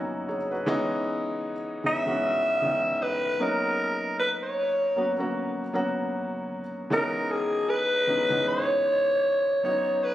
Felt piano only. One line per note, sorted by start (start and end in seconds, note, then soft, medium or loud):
0.00 0.70 F#3 medium
0.00 0.69 A#3 medium
0.00 0.68 B3 medium
0.00 0.68 C#4 medium
0.00 0.68 D#4 medium
0.00 0.70 E4 medium
0.00 0.52 F#4 medium
0.00 0.27 A#4 medium
0.00 0.64 G#5 medium
0.28 0.50 G#4 medium
0.28 0.50 C#5 medium
0.51 0.89 F#4 medium
0.51 0.88 B4 medium
0.66 1.52 E3 loud
0.66 1.52 G#3 loud
0.66 1.53 B3 loud
0.66 1.53 C#4 loud
0.66 1.53 D#4 loud
1.84 2.00 E3 medium
1.84 2.01 G#3 medium
1.84 2.01 B3 medium
1.84 2.01 C#4 medium
1.84 2.01 D#4 medium
2.06 2.48 E3 medium
2.06 2.48 G#3 medium
2.06 2.49 B3 medium
2.06 2.49 C#4 medium
2.06 2.49 F#4 medium
2.62 3.41 D#3 medium
2.62 3.40 E3 medium
2.62 3.40 G#3 medium
2.62 3.39 B3 medium
2.62 3.39 C#4 medium
3.39 4.66 F#3 medium
3.39 4.66 A#3 medium
3.39 4.66 B3 medium
3.39 4.66 C#4 medium
3.39 4.67 D#4 medium
4.96 5.12 F#3 medium
4.96 5.12 A#3 medium
4.96 5.13 B3 medium
4.96 5.13 C#4 medium
4.96 5.13 F#4 medium
5.18 5.60 F#3 medium
5.18 5.60 A#3 medium
5.18 5.61 B3 medium
5.18 5.61 C#4 medium
5.18 5.61 F#4 medium
5.73 6.59 F#3 medium
5.73 6.59 A#3 medium
5.73 6.59 B3 medium
5.73 6.60 C#4 medium
5.73 6.60 F#4 loud
6.90 7.76 E3 loud
6.90 7.76 G#3 medium
6.90 7.76 B3 medium
6.90 7.77 C#4 medium
6.90 7.77 D#4 loud
8.07 8.24 E3 medium
8.07 8.24 G#3 medium
8.07 8.24 B3 medium
8.07 8.25 C#4 medium
8.07 8.25 D#4 medium
8.30 9.42 E3 medium
8.30 9.42 G#3 medium
8.30 9.42 B3 medium
8.30 9.42 C#4 medium
8.30 9.43 D#4 medium
9.63 10.14 F#3 medium
9.63 10.14 B3 medium
9.63 10.14 C#4 medium
9.63 10.14 D#4 medium